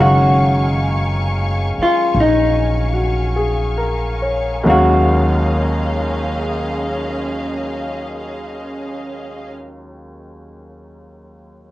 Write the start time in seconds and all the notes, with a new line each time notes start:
Already playing: F#1 D#3 F#3 G#3 C#4 F5 G#5 C#6
0.01 F#4
1.78 muted upright bass stroke
1.83 F4
2.15 A#1
2.20 D#4
2.93 F#4
3.36 G#4
3.78 A#4
4.22 C#5
4.63 D#2 D#3 F#3 G#3 C#4 G#4 D#5 F5
4.68 C#4 F#4 F5